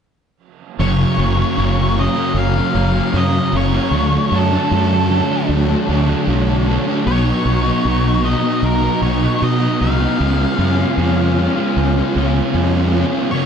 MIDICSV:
0, 0, Header, 1, 6, 480
1, 0, Start_track
1, 0, Tempo, 783290
1, 489, Time_signature, 4, 2, 24, 8
1, 8246, End_track
2, 0, Start_track
2, 0, Title_t, "Analog synth pad"
2, 0, Program_c, 0, 89
2, 494, Note_on_c, 0, 73, 65
2, 497, Note_on_c, 0, 66, 74
2, 502, Note_on_c, 0, 77, 65
2, 502, Note_on_c, 0, 82, 88
2, 2399, Note_off_c, 0, 77, 0
2, 2399, Note_off_c, 0, 82, 0
2, 2405, Note_on_c, 0, 62, 65
2, 2407, Note_on_c, 0, 81, 86
2, 4310, Note_off_c, 0, 62, 0
2, 4311, Note_off_c, 0, 73, 0
2, 4311, Note_off_c, 0, 81, 0
2, 4329, Note_on_c, 0, 59, 69
2, 4334, Note_on_c, 0, 75, 68
2, 4338, Note_on_c, 0, 82, 85
2, 6231, Note_off_c, 0, 66, 0
2, 6233, Note_off_c, 0, 75, 0
2, 6235, Note_off_c, 0, 82, 0
2, 6259, Note_on_c, 0, 73, 69
2, 6263, Note_on_c, 0, 80, 87
2, 6270, Note_on_c, 0, 65, 72
2, 8139, Note_off_c, 0, 59, 0
2, 8150, Note_off_c, 0, 73, 0
2, 8153, Note_off_c, 0, 80, 0
2, 8156, Note_off_c, 0, 65, 0
2, 8181, Note_on_c, 0, 73, 71
2, 8181, Note_on_c, 0, 82, 80
2, 8187, Note_on_c, 0, 77, 74
2, 8190, Note_on_c, 0, 66, 81
2, 8246, Note_off_c, 0, 66, 0
2, 8246, Note_off_c, 0, 73, 0
2, 8246, Note_off_c, 0, 77, 0
2, 8246, Note_off_c, 0, 82, 0
2, 8246, End_track
3, 0, Start_track
3, 0, Title_t, "Lead electric guitar"
3, 0, Program_c, 1, 29
3, 490, Note_on_c, 1, 73, 87
3, 1222, Note_off_c, 1, 73, 0
3, 1224, Note_on_c, 1, 75, 82
3, 1457, Note_on_c, 1, 77, 96
3, 1464, Note_off_c, 1, 75, 0
3, 1945, Note_on_c, 1, 75, 81
3, 1949, Note_off_c, 1, 77, 0
3, 2162, Note_off_c, 1, 75, 0
3, 2186, Note_on_c, 1, 73, 90
3, 2669, Note_on_c, 1, 69, 70
3, 2673, Note_off_c, 1, 73, 0
3, 3356, Note_off_c, 1, 69, 0
3, 4332, Note_on_c, 1, 73, 85
3, 5054, Note_on_c, 1, 75, 83
3, 5074, Note_off_c, 1, 73, 0
3, 5298, Note_on_c, 1, 70, 81
3, 5301, Note_off_c, 1, 75, 0
3, 5528, Note_off_c, 1, 70, 0
3, 5531, Note_on_c, 1, 73, 76
3, 5778, Note_off_c, 1, 73, 0
3, 5781, Note_on_c, 1, 75, 89
3, 6012, Note_off_c, 1, 75, 0
3, 6015, Note_on_c, 1, 77, 90
3, 7665, Note_off_c, 1, 77, 0
3, 8157, Note_on_c, 1, 73, 76
3, 8246, Note_off_c, 1, 73, 0
3, 8246, End_track
4, 0, Start_track
4, 0, Title_t, "Distorted electric guitar"
4, 0, Program_c, 2, 30
4, 862, Note_on_c, 2, 49, 58
4, 971, Note_off_c, 2, 49, 0
4, 1090, Note_on_c, 2, 54, 71
4, 1104, Note_on_c, 2, 49, 49
4, 1216, Note_off_c, 2, 49, 0
4, 1218, Note_on_c, 2, 42, 71
4, 1230, Note_off_c, 2, 54, 0
4, 1344, Note_on_c, 2, 49, 60
4, 1574, Note_on_c, 2, 54, 60
4, 1575, Note_off_c, 2, 42, 0
4, 1580, Note_off_c, 2, 49, 0
4, 1588, Note_on_c, 2, 49, 52
4, 1692, Note_on_c, 2, 42, 67
4, 1697, Note_off_c, 2, 49, 0
4, 1704, Note_off_c, 2, 54, 0
4, 1824, Note_on_c, 2, 49, 55
4, 1918, Note_off_c, 2, 42, 0
4, 1924, Note_off_c, 2, 49, 0
4, 2172, Note_on_c, 2, 42, 66
4, 2307, Note_on_c, 2, 49, 47
4, 2398, Note_off_c, 2, 42, 0
4, 2400, Note_off_c, 2, 49, 0
4, 3020, Note_on_c, 2, 62, 65
4, 3038, Note_on_c, 2, 57, 54
4, 3121, Note_off_c, 2, 57, 0
4, 3133, Note_off_c, 2, 62, 0
4, 3485, Note_on_c, 2, 62, 67
4, 3498, Note_on_c, 2, 57, 55
4, 3595, Note_off_c, 2, 57, 0
4, 3604, Note_off_c, 2, 62, 0
4, 4679, Note_on_c, 2, 59, 68
4, 4691, Note_on_c, 2, 54, 63
4, 4806, Note_off_c, 2, 54, 0
4, 4816, Note_off_c, 2, 59, 0
4, 4931, Note_on_c, 2, 59, 66
4, 4945, Note_on_c, 2, 54, 56
4, 5041, Note_off_c, 2, 54, 0
4, 5055, Note_off_c, 2, 59, 0
4, 5405, Note_on_c, 2, 59, 65
4, 5419, Note_on_c, 2, 54, 52
4, 5537, Note_off_c, 2, 54, 0
4, 5541, Note_off_c, 2, 59, 0
4, 6257, Note_on_c, 2, 61, 104
4, 6611, Note_off_c, 2, 61, 0
4, 6618, Note_on_c, 2, 61, 73
4, 6750, Note_off_c, 2, 61, 0
4, 6757, Note_on_c, 2, 61, 81
4, 6851, Note_off_c, 2, 61, 0
4, 6858, Note_on_c, 2, 61, 61
4, 6874, Note_on_c, 2, 56, 53
4, 6979, Note_off_c, 2, 56, 0
4, 6989, Note_off_c, 2, 61, 0
4, 6996, Note_on_c, 2, 61, 71
4, 7091, Note_off_c, 2, 61, 0
4, 7098, Note_on_c, 2, 61, 63
4, 7323, Note_off_c, 2, 61, 0
4, 7330, Note_on_c, 2, 61, 67
4, 7352, Note_on_c, 2, 56, 53
4, 7451, Note_off_c, 2, 56, 0
4, 7458, Note_off_c, 2, 61, 0
4, 7465, Note_on_c, 2, 61, 83
4, 7559, Note_off_c, 2, 61, 0
4, 7567, Note_on_c, 2, 61, 69
4, 7700, Note_off_c, 2, 61, 0
4, 7708, Note_on_c, 2, 61, 96
4, 7931, Note_off_c, 2, 61, 0
4, 7939, Note_on_c, 2, 61, 67
4, 8036, Note_off_c, 2, 61, 0
4, 8044, Note_on_c, 2, 61, 62
4, 8150, Note_off_c, 2, 61, 0
4, 8246, End_track
5, 0, Start_track
5, 0, Title_t, "Overdriven electric guitar"
5, 0, Program_c, 3, 29
5, 484, Note_on_c, 3, 42, 79
5, 487, Note_on_c, 3, 49, 78
5, 487, Note_on_c, 3, 54, 77
5, 493, Note_on_c, 3, 58, 75
5, 495, Note_on_c, 3, 61, 84
5, 717, Note_off_c, 3, 49, 0
5, 724, Note_off_c, 3, 54, 0
5, 724, Note_on_c, 3, 49, 72
5, 725, Note_off_c, 3, 58, 0
5, 726, Note_on_c, 3, 54, 72
5, 732, Note_off_c, 3, 61, 0
5, 732, Note_on_c, 3, 58, 79
5, 735, Note_on_c, 3, 61, 74
5, 836, Note_off_c, 3, 58, 0
5, 836, Note_off_c, 3, 61, 0
5, 838, Note_on_c, 3, 61, 64
5, 843, Note_on_c, 3, 58, 66
5, 848, Note_off_c, 3, 54, 0
5, 850, Note_on_c, 3, 54, 60
5, 952, Note_off_c, 3, 42, 0
5, 955, Note_off_c, 3, 49, 0
5, 960, Note_off_c, 3, 58, 0
5, 960, Note_on_c, 3, 42, 74
5, 962, Note_on_c, 3, 49, 78
5, 963, Note_off_c, 3, 54, 0
5, 965, Note_on_c, 3, 54, 80
5, 968, Note_off_c, 3, 61, 0
5, 968, Note_on_c, 3, 58, 90
5, 970, Note_on_c, 3, 61, 77
5, 1195, Note_off_c, 3, 49, 0
5, 1202, Note_on_c, 3, 49, 62
5, 1203, Note_off_c, 3, 58, 0
5, 1209, Note_off_c, 3, 54, 0
5, 1211, Note_off_c, 3, 61, 0
5, 1211, Note_on_c, 3, 58, 62
5, 1212, Note_on_c, 3, 54, 65
5, 1214, Note_on_c, 3, 61, 71
5, 1316, Note_off_c, 3, 61, 0
5, 1322, Note_off_c, 3, 58, 0
5, 1323, Note_on_c, 3, 61, 70
5, 1329, Note_on_c, 3, 58, 71
5, 1331, Note_off_c, 3, 54, 0
5, 1333, Note_on_c, 3, 54, 55
5, 1445, Note_off_c, 3, 42, 0
5, 1567, Note_off_c, 3, 49, 0
5, 1680, Note_off_c, 3, 58, 0
5, 1682, Note_off_c, 3, 61, 0
5, 1682, Note_on_c, 3, 49, 63
5, 1683, Note_off_c, 3, 54, 0
5, 1685, Note_on_c, 3, 54, 66
5, 1687, Note_on_c, 3, 58, 79
5, 1690, Note_on_c, 3, 61, 74
5, 1792, Note_off_c, 3, 61, 0
5, 1796, Note_off_c, 3, 58, 0
5, 1799, Note_on_c, 3, 61, 64
5, 1803, Note_on_c, 3, 58, 69
5, 1804, Note_off_c, 3, 54, 0
5, 1807, Note_on_c, 3, 54, 60
5, 1924, Note_off_c, 3, 49, 0
5, 1928, Note_off_c, 3, 58, 0
5, 1931, Note_on_c, 3, 42, 81
5, 1932, Note_on_c, 3, 49, 83
5, 1934, Note_off_c, 3, 54, 0
5, 1934, Note_off_c, 3, 61, 0
5, 1936, Note_on_c, 3, 54, 83
5, 1936, Note_on_c, 3, 58, 88
5, 1941, Note_on_c, 3, 61, 87
5, 2030, Note_off_c, 3, 61, 0
5, 2038, Note_off_c, 3, 58, 0
5, 2038, Note_on_c, 3, 61, 61
5, 2045, Note_on_c, 3, 58, 57
5, 2050, Note_off_c, 3, 54, 0
5, 2052, Note_on_c, 3, 54, 56
5, 2161, Note_off_c, 3, 49, 0
5, 2168, Note_off_c, 3, 54, 0
5, 2169, Note_on_c, 3, 49, 68
5, 2170, Note_off_c, 3, 61, 0
5, 2171, Note_off_c, 3, 58, 0
5, 2171, Note_on_c, 3, 54, 72
5, 2177, Note_on_c, 3, 61, 77
5, 2178, Note_on_c, 3, 58, 65
5, 2275, Note_off_c, 3, 61, 0
5, 2279, Note_off_c, 3, 58, 0
5, 2282, Note_on_c, 3, 61, 73
5, 2286, Note_on_c, 3, 58, 65
5, 2291, Note_off_c, 3, 42, 0
5, 2292, Note_off_c, 3, 54, 0
5, 2294, Note_on_c, 3, 54, 56
5, 2392, Note_off_c, 3, 61, 0
5, 2394, Note_off_c, 3, 58, 0
5, 2395, Note_off_c, 3, 49, 0
5, 2398, Note_on_c, 3, 50, 84
5, 2405, Note_off_c, 3, 54, 0
5, 2407, Note_on_c, 3, 57, 76
5, 2408, Note_on_c, 3, 54, 79
5, 2409, Note_on_c, 3, 62, 89
5, 2633, Note_off_c, 3, 50, 0
5, 2640, Note_on_c, 3, 50, 64
5, 2641, Note_off_c, 3, 57, 0
5, 2648, Note_off_c, 3, 54, 0
5, 2649, Note_on_c, 3, 57, 82
5, 2650, Note_on_c, 3, 54, 69
5, 2651, Note_off_c, 3, 62, 0
5, 2658, Note_on_c, 3, 62, 77
5, 2764, Note_off_c, 3, 62, 0
5, 2771, Note_on_c, 3, 62, 70
5, 2775, Note_off_c, 3, 57, 0
5, 2781, Note_off_c, 3, 54, 0
5, 2782, Note_on_c, 3, 57, 58
5, 2784, Note_on_c, 3, 54, 53
5, 2882, Note_off_c, 3, 50, 0
5, 2889, Note_on_c, 3, 50, 78
5, 2892, Note_off_c, 3, 54, 0
5, 2893, Note_off_c, 3, 57, 0
5, 2894, Note_off_c, 3, 62, 0
5, 2895, Note_on_c, 3, 54, 76
5, 2900, Note_on_c, 3, 57, 84
5, 2902, Note_on_c, 3, 62, 79
5, 3117, Note_off_c, 3, 50, 0
5, 3124, Note_on_c, 3, 50, 66
5, 3130, Note_off_c, 3, 54, 0
5, 3131, Note_off_c, 3, 57, 0
5, 3132, Note_off_c, 3, 62, 0
5, 3133, Note_on_c, 3, 54, 65
5, 3138, Note_on_c, 3, 57, 66
5, 3139, Note_on_c, 3, 62, 62
5, 3243, Note_off_c, 3, 62, 0
5, 3251, Note_on_c, 3, 62, 65
5, 3252, Note_off_c, 3, 57, 0
5, 3256, Note_off_c, 3, 54, 0
5, 3259, Note_on_c, 3, 57, 60
5, 3263, Note_on_c, 3, 54, 60
5, 3489, Note_off_c, 3, 50, 0
5, 3607, Note_off_c, 3, 54, 0
5, 3607, Note_on_c, 3, 50, 62
5, 3614, Note_off_c, 3, 57, 0
5, 3615, Note_on_c, 3, 54, 74
5, 3618, Note_off_c, 3, 62, 0
5, 3621, Note_on_c, 3, 57, 77
5, 3625, Note_on_c, 3, 62, 83
5, 3711, Note_off_c, 3, 62, 0
5, 3719, Note_on_c, 3, 62, 68
5, 3721, Note_off_c, 3, 57, 0
5, 3723, Note_off_c, 3, 54, 0
5, 3728, Note_on_c, 3, 57, 61
5, 3730, Note_on_c, 3, 54, 57
5, 3848, Note_off_c, 3, 50, 0
5, 3852, Note_off_c, 3, 54, 0
5, 3854, Note_off_c, 3, 57, 0
5, 3854, Note_off_c, 3, 62, 0
5, 3855, Note_on_c, 3, 50, 75
5, 3859, Note_on_c, 3, 54, 82
5, 3862, Note_on_c, 3, 57, 88
5, 3862, Note_on_c, 3, 62, 86
5, 3970, Note_off_c, 3, 62, 0
5, 3976, Note_off_c, 3, 57, 0
5, 3977, Note_on_c, 3, 62, 62
5, 3982, Note_off_c, 3, 54, 0
5, 3984, Note_on_c, 3, 57, 54
5, 3989, Note_on_c, 3, 54, 54
5, 4090, Note_off_c, 3, 50, 0
5, 4096, Note_off_c, 3, 54, 0
5, 4097, Note_on_c, 3, 50, 67
5, 4101, Note_off_c, 3, 57, 0
5, 4102, Note_off_c, 3, 62, 0
5, 4103, Note_on_c, 3, 54, 65
5, 4109, Note_on_c, 3, 57, 72
5, 4109, Note_on_c, 3, 62, 85
5, 4215, Note_off_c, 3, 62, 0
5, 4221, Note_off_c, 3, 57, 0
5, 4222, Note_on_c, 3, 62, 64
5, 4228, Note_on_c, 3, 57, 66
5, 4230, Note_off_c, 3, 54, 0
5, 4237, Note_on_c, 3, 54, 54
5, 4321, Note_off_c, 3, 50, 0
5, 4323, Note_off_c, 3, 62, 0
5, 4326, Note_off_c, 3, 57, 0
5, 4330, Note_off_c, 3, 54, 0
5, 4343, Note_on_c, 3, 47, 87
5, 4349, Note_on_c, 3, 54, 70
5, 4352, Note_on_c, 3, 59, 92
5, 4360, Note_on_c, 3, 63, 83
5, 4581, Note_off_c, 3, 47, 0
5, 4586, Note_off_c, 3, 54, 0
5, 4588, Note_on_c, 3, 47, 71
5, 4592, Note_off_c, 3, 63, 0
5, 4594, Note_off_c, 3, 59, 0
5, 4594, Note_on_c, 3, 54, 75
5, 4596, Note_on_c, 3, 59, 78
5, 4599, Note_on_c, 3, 63, 78
5, 4696, Note_off_c, 3, 63, 0
5, 4703, Note_on_c, 3, 63, 70
5, 4707, Note_off_c, 3, 59, 0
5, 4709, Note_off_c, 3, 54, 0
5, 4709, Note_on_c, 3, 59, 71
5, 4716, Note_on_c, 3, 54, 59
5, 4805, Note_off_c, 3, 47, 0
5, 4812, Note_off_c, 3, 54, 0
5, 4813, Note_on_c, 3, 47, 74
5, 4818, Note_off_c, 3, 63, 0
5, 4819, Note_on_c, 3, 54, 88
5, 4821, Note_off_c, 3, 59, 0
5, 4823, Note_on_c, 3, 59, 87
5, 4826, Note_on_c, 3, 63, 91
5, 5048, Note_off_c, 3, 47, 0
5, 5055, Note_off_c, 3, 54, 0
5, 5055, Note_on_c, 3, 47, 64
5, 5057, Note_off_c, 3, 63, 0
5, 5060, Note_off_c, 3, 59, 0
5, 5062, Note_on_c, 3, 59, 72
5, 5063, Note_on_c, 3, 54, 66
5, 5064, Note_on_c, 3, 63, 70
5, 5169, Note_off_c, 3, 63, 0
5, 5177, Note_on_c, 3, 63, 73
5, 5179, Note_off_c, 3, 54, 0
5, 5179, Note_off_c, 3, 59, 0
5, 5186, Note_on_c, 3, 54, 60
5, 5186, Note_on_c, 3, 59, 63
5, 5414, Note_off_c, 3, 47, 0
5, 5528, Note_off_c, 3, 54, 0
5, 5532, Note_on_c, 3, 47, 73
5, 5535, Note_on_c, 3, 54, 79
5, 5538, Note_off_c, 3, 59, 0
5, 5540, Note_off_c, 3, 63, 0
5, 5545, Note_on_c, 3, 59, 73
5, 5548, Note_on_c, 3, 63, 74
5, 5641, Note_off_c, 3, 63, 0
5, 5648, Note_off_c, 3, 59, 0
5, 5648, Note_on_c, 3, 63, 71
5, 5655, Note_off_c, 3, 54, 0
5, 5655, Note_on_c, 3, 59, 67
5, 5663, Note_on_c, 3, 54, 65
5, 5746, Note_off_c, 3, 47, 0
5, 5753, Note_on_c, 3, 47, 92
5, 5754, Note_off_c, 3, 54, 0
5, 5755, Note_off_c, 3, 59, 0
5, 5761, Note_off_c, 3, 63, 0
5, 5761, Note_on_c, 3, 54, 78
5, 5763, Note_on_c, 3, 59, 88
5, 5769, Note_on_c, 3, 63, 93
5, 5876, Note_off_c, 3, 63, 0
5, 5884, Note_on_c, 3, 63, 64
5, 5887, Note_off_c, 3, 54, 0
5, 5887, Note_off_c, 3, 59, 0
5, 5894, Note_on_c, 3, 54, 54
5, 5894, Note_on_c, 3, 59, 61
5, 6004, Note_off_c, 3, 47, 0
5, 6012, Note_on_c, 3, 47, 78
5, 6013, Note_off_c, 3, 54, 0
5, 6016, Note_off_c, 3, 59, 0
5, 6020, Note_on_c, 3, 54, 75
5, 6022, Note_off_c, 3, 63, 0
5, 6023, Note_on_c, 3, 59, 84
5, 6030, Note_on_c, 3, 63, 85
5, 6122, Note_off_c, 3, 63, 0
5, 6129, Note_off_c, 3, 59, 0
5, 6129, Note_on_c, 3, 63, 75
5, 6133, Note_off_c, 3, 54, 0
5, 6136, Note_on_c, 3, 59, 60
5, 6140, Note_on_c, 3, 54, 58
5, 6236, Note_off_c, 3, 63, 0
5, 6237, Note_off_c, 3, 47, 0
5, 6239, Note_off_c, 3, 59, 0
5, 6241, Note_off_c, 3, 54, 0
5, 6243, Note_on_c, 3, 49, 81
5, 6254, Note_on_c, 3, 56, 84
5, 6254, Note_on_c, 3, 59, 79
5, 6254, Note_on_c, 3, 65, 87
5, 6470, Note_off_c, 3, 49, 0
5, 6474, Note_off_c, 3, 56, 0
5, 6477, Note_on_c, 3, 49, 74
5, 6480, Note_off_c, 3, 59, 0
5, 6481, Note_on_c, 3, 56, 71
5, 6482, Note_off_c, 3, 65, 0
5, 6487, Note_on_c, 3, 59, 79
5, 6489, Note_on_c, 3, 65, 75
5, 6600, Note_off_c, 3, 65, 0
5, 6607, Note_on_c, 3, 65, 73
5, 6608, Note_off_c, 3, 59, 0
5, 6615, Note_off_c, 3, 56, 0
5, 6616, Note_on_c, 3, 59, 60
5, 6622, Note_on_c, 3, 56, 54
5, 6727, Note_off_c, 3, 49, 0
5, 6731, Note_off_c, 3, 56, 0
5, 6734, Note_on_c, 3, 49, 81
5, 6737, Note_off_c, 3, 59, 0
5, 6738, Note_on_c, 3, 56, 79
5, 6742, Note_off_c, 3, 65, 0
5, 6744, Note_on_c, 3, 59, 89
5, 6749, Note_on_c, 3, 65, 94
5, 6960, Note_off_c, 3, 49, 0
5, 6967, Note_off_c, 3, 56, 0
5, 6967, Note_on_c, 3, 49, 59
5, 6973, Note_off_c, 3, 65, 0
5, 6974, Note_off_c, 3, 59, 0
5, 6974, Note_on_c, 3, 56, 68
5, 6981, Note_on_c, 3, 59, 64
5, 6981, Note_on_c, 3, 65, 70
5, 7075, Note_off_c, 3, 65, 0
5, 7077, Note_off_c, 3, 59, 0
5, 7082, Note_on_c, 3, 65, 71
5, 7084, Note_on_c, 3, 59, 67
5, 7085, Note_off_c, 3, 56, 0
5, 7092, Note_on_c, 3, 56, 61
5, 7327, Note_off_c, 3, 49, 0
5, 7438, Note_off_c, 3, 56, 0
5, 7438, Note_off_c, 3, 59, 0
5, 7440, Note_on_c, 3, 49, 67
5, 7442, Note_off_c, 3, 65, 0
5, 7445, Note_on_c, 3, 56, 68
5, 7445, Note_on_c, 3, 59, 75
5, 7449, Note_on_c, 3, 65, 69
5, 7559, Note_off_c, 3, 65, 0
5, 7567, Note_on_c, 3, 65, 75
5, 7568, Note_off_c, 3, 59, 0
5, 7574, Note_off_c, 3, 56, 0
5, 7576, Note_on_c, 3, 59, 59
5, 7581, Note_on_c, 3, 56, 58
5, 7679, Note_off_c, 3, 49, 0
5, 7680, Note_off_c, 3, 56, 0
5, 7680, Note_off_c, 3, 59, 0
5, 7685, Note_off_c, 3, 65, 0
5, 7686, Note_on_c, 3, 49, 78
5, 7687, Note_on_c, 3, 56, 79
5, 7688, Note_on_c, 3, 59, 84
5, 7692, Note_on_c, 3, 65, 90
5, 7795, Note_off_c, 3, 65, 0
5, 7802, Note_off_c, 3, 59, 0
5, 7802, Note_on_c, 3, 65, 61
5, 7809, Note_off_c, 3, 56, 0
5, 7809, Note_on_c, 3, 59, 55
5, 7816, Note_on_c, 3, 56, 58
5, 7912, Note_off_c, 3, 49, 0
5, 7916, Note_off_c, 3, 56, 0
5, 7919, Note_on_c, 3, 49, 76
5, 7920, Note_off_c, 3, 59, 0
5, 7923, Note_off_c, 3, 65, 0
5, 7924, Note_on_c, 3, 56, 74
5, 7927, Note_on_c, 3, 59, 73
5, 7931, Note_on_c, 3, 65, 75
5, 8038, Note_off_c, 3, 65, 0
5, 8045, Note_on_c, 3, 65, 73
5, 8049, Note_off_c, 3, 59, 0
5, 8056, Note_off_c, 3, 56, 0
5, 8056, Note_on_c, 3, 59, 57
5, 8063, Note_on_c, 3, 56, 55
5, 8148, Note_off_c, 3, 49, 0
5, 8151, Note_off_c, 3, 65, 0
5, 8156, Note_off_c, 3, 59, 0
5, 8160, Note_off_c, 3, 56, 0
5, 8169, Note_on_c, 3, 42, 81
5, 8174, Note_on_c, 3, 54, 84
5, 8175, Note_on_c, 3, 49, 88
5, 8180, Note_on_c, 3, 58, 83
5, 8180, Note_on_c, 3, 61, 84
5, 8246, Note_off_c, 3, 42, 0
5, 8246, Note_off_c, 3, 49, 0
5, 8246, Note_off_c, 3, 54, 0
5, 8246, Note_off_c, 3, 58, 0
5, 8246, Note_off_c, 3, 61, 0
5, 8246, End_track
6, 0, Start_track
6, 0, Title_t, "Fingered electric bass"
6, 0, Program_c, 4, 33
6, 486, Note_on_c, 4, 30, 80
6, 637, Note_off_c, 4, 30, 0
6, 723, Note_on_c, 4, 30, 79
6, 875, Note_off_c, 4, 30, 0
6, 967, Note_on_c, 4, 30, 80
6, 1267, Note_off_c, 4, 30, 0
6, 1437, Note_on_c, 4, 30, 84
6, 1591, Note_off_c, 4, 30, 0
6, 1683, Note_on_c, 4, 30, 80
6, 1835, Note_off_c, 4, 30, 0
6, 1922, Note_on_c, 4, 42, 85
6, 2074, Note_off_c, 4, 42, 0
6, 2163, Note_on_c, 4, 30, 77
6, 2315, Note_off_c, 4, 30, 0
6, 2397, Note_on_c, 4, 38, 81
6, 2551, Note_off_c, 4, 38, 0
6, 2645, Note_on_c, 4, 42, 75
6, 2796, Note_off_c, 4, 42, 0
6, 2888, Note_on_c, 4, 42, 81
6, 3188, Note_off_c, 4, 42, 0
6, 3366, Note_on_c, 4, 38, 81
6, 3517, Note_off_c, 4, 38, 0
6, 3608, Note_on_c, 4, 38, 83
6, 3759, Note_off_c, 4, 38, 0
6, 3845, Note_on_c, 4, 35, 77
6, 4147, Note_off_c, 4, 35, 0
6, 4330, Note_on_c, 4, 35, 83
6, 4480, Note_off_c, 4, 35, 0
6, 4568, Note_on_c, 4, 35, 81
6, 4719, Note_off_c, 4, 35, 0
6, 4810, Note_on_c, 4, 35, 78
6, 5110, Note_off_c, 4, 35, 0
6, 5286, Note_on_c, 4, 35, 84
6, 5437, Note_off_c, 4, 35, 0
6, 5526, Note_on_c, 4, 35, 82
6, 5677, Note_off_c, 4, 35, 0
6, 5773, Note_on_c, 4, 47, 89
6, 5922, Note_off_c, 4, 47, 0
6, 6013, Note_on_c, 4, 36, 82
6, 6162, Note_off_c, 4, 36, 0
6, 6252, Note_on_c, 4, 37, 77
6, 6401, Note_off_c, 4, 37, 0
6, 6487, Note_on_c, 4, 42, 80
6, 6637, Note_off_c, 4, 42, 0
6, 6725, Note_on_c, 4, 41, 82
6, 7025, Note_off_c, 4, 41, 0
6, 7210, Note_on_c, 4, 37, 77
6, 7359, Note_off_c, 4, 37, 0
6, 7452, Note_on_c, 4, 37, 82
6, 7600, Note_off_c, 4, 37, 0
6, 7687, Note_on_c, 4, 41, 75
6, 7985, Note_off_c, 4, 41, 0
6, 8246, End_track
0, 0, End_of_file